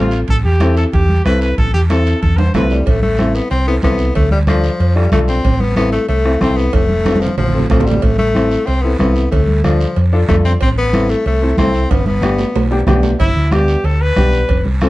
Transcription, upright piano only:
Already playing: C4 F4 A4
0.61 C4 E4 A4
1.26 C4 E4 A4
1.90 C4 E4 A4
2.55 C4 E4 A4
3.19 C4 E4 A4
3.67 C4 E4 A4
3.82 C4 E4 A4
4.47 D4 F4 A4
4.95 D4 F4 A4
5.13 D4 F4 A4
5.76 C4 E4 A4
6.25 C4 E4 A4
6.41 C4 E4 A4
7.05 C4 F4 A4
7.54 C4 F4 A4
7.70 C4 F4 A4
8.34 C4 E4 A4
8.83 C4 E4 A4
8.99 C4 E4 A4
9.64 D4 F4 A4
10.13 D4 F4 A4
10.29 D4 F4 A4
10.93 C4 E4 A4
11.42 C4 E4 A4
11.58 C4 E4 A4
12.22 B3 D4 G4
12.71 B3 D4 G4
12.87 B3 D4 G4
13.51 B3 D4 G4
14.17 B3 D4 G4
14.82 C4 F4 A4

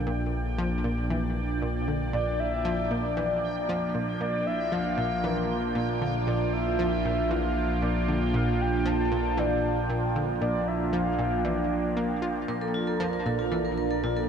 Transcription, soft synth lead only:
2.14 D5
2.40 E5
2.92 D5
4.22 D5
4.47 E5
4.73 F5
5.25 A#4
6.28 D5
6.53 E5
7.31 F5
7.83 D5
8.35 F5
8.61 G5
8.87 A5
9.39 D5
10.42 D5
10.68 E5
10.93 F5
11.44 D5

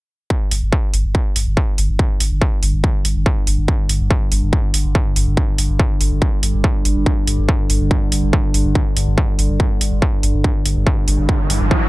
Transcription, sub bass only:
0.51 G1
0.63 G1
0.94 G1
1.05 G1
1.36 G1
1.47 G1
1.78 G1
1.89 G1
2.20 G1
2.31 G1
2.63 G1
2.74 G1
3.05 G1
3.16 G1
3.47 G1
3.58 G1
3.89 G1
4.01 G1
4.32 G1
4.43 G1
4.74 G1
4.85 G1
5.16 G1
5.27 G1
5.58 G1
5.70 G1
6.01 G1
6.12 G1
6.43 G1
6.54 G1
6.85 G1
6.96 G1
7.27 G1
7.39 G1
7.70 G1
7.81 G1
8.12 G1
8.23 G1
8.54 G1
8.65 G1
8.96 G1
9.08 G1
9.39 G1
9.50 G1
9.81 G1
9.92 G1
10.23 G1
10.34 G1
10.65 G1
10.77 G1
11.08 G1
11.19 G1
11.50 G1
11.61 G1

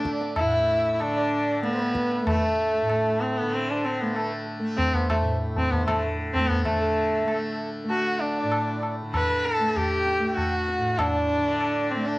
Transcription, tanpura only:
Already playing: A2 D3 A3
0.41 A2
1.01 D3
1.61 A3
2.22 A3
2.82 A2
3.42 D3
4.01 A3
4.59 A3
5.21 A2
5.81 D3
6.39 A3
6.65 D3
7.24 A3
7.84 A3
8.43 A2
9.02 D3
9.60 A3
10.20 A3
10.79 A2
11.38 D3
11.95 A3

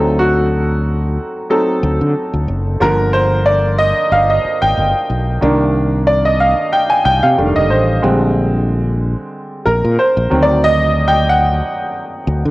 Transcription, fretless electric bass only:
Already playing: D2
1.83 D2
2.01 D3
2.33 D2
2.48 F#1
2.81 G1
4.11 G1
4.45 muted fretless electric bass stroke
4.62 G#1
4.77 G1
5.10 B1
5.42 C2
7.05 C2
7.23 C3
7.38 F1
7.56 F1
7.71 A1
8.04 A#1
9.67 A#1
9.84 A#2
10.17 A#1
10.32 D2
12.27 D2
12.45 D3

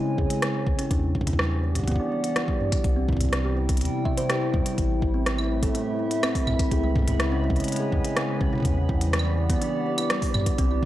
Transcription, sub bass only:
0.18 E2
0.67 C#2
0.91 E2
2.60 G2
2.84 C2
3.81 E2
4.54 E2
4.78 A1
6.47 C2
6.71 C#2
7.92 E2
8.41 C#2
8.65 E2
10.34 G2
10.58 C2

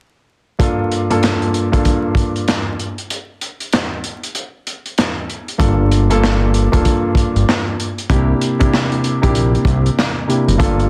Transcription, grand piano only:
0.58 G2 A#3 D4 F4 A4
1.10 G2 A#3 D4 F4 A4
1.72 G2 A#3 D4 F4 A4
5.58 G2 A#3 D4 F4 A4
6.10 G2 A#3 D4 F4 A4
6.72 G2 A#3 D4 F4 A4
8.09 C3 A#3 D4 E4 G4
8.59 C3 A#3 D4 E4 G4
9.21 C3 A#3 D4 E4 G4
10.28 C3 A#3 D4 E4 G4
10.58 G2 A#3 D4 F4 A4

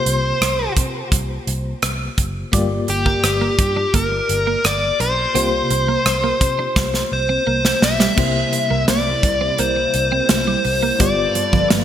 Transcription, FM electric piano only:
Already playing: C3 A#3 F4 G4 C5
2.52 G2 A3 F4 G4 D5
2.58 A#3
5.34 C3 A#3 F4 G4 C5
8.16 C3 A#3 E4 G4 C5
10.99 G2 B3 F4 G4 D5

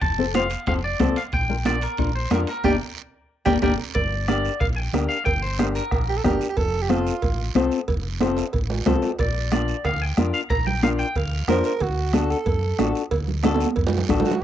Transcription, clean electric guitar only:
0.01 A5
0.35 F5
0.67 F5
0.84 D5
1.17 F5
1.34 G5
1.66 D5
1.83 A#4
2.15 C5
2.33 A#4
2.49 A#4
2.65 A#4 D5 G5
3.46 A#4 D5 G5
3.62 A#4 D5 G5
3.94 D5
4.28 D5
4.60 F5
4.76 G5
5.09 F5
5.25 G5
5.42 C5
5.59 C5
5.76 A#4
9.20 D5
9.53 D5
9.85 F5
10.02 G5
10.34 F5
10.50 A#5
10.67 G5
10.83 F5
10.99 G5
11.16 F5

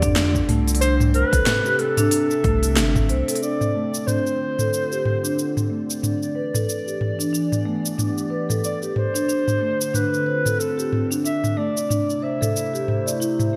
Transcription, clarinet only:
Already playing: D5
0.81 C5
1.15 B4
1.80 A4
3.42 D5
4.07 C5
8.64 D5
8.97 C5
9.95 B4
10.60 A4
11.26 E5
11.58 D5
12.23 E5

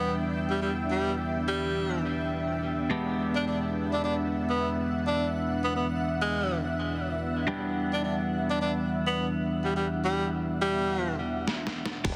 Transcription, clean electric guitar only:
Already playing: E2 G3 B3 D4 G4
2.90 E2 G#3 B3 D4 G4
7.47 E2 G3 B3 D4 G4
12.04 G#3 B3 D4 G4

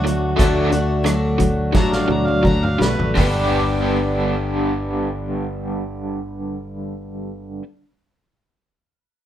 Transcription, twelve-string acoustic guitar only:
Already playing: F#3 A3 D4 F#4
0.39 D3 F#3 A3 D4 F#4
0.72 A3 D4 F#4
1.04 F#3 A3 D4 F#4
1.74 D3 F#3 A3 D4 F#4
2.45 F#3 A3 D4 F#4
2.81 A3 D4 F#4
3.15 G2 D3 G3
3.20 B3 D4 G4

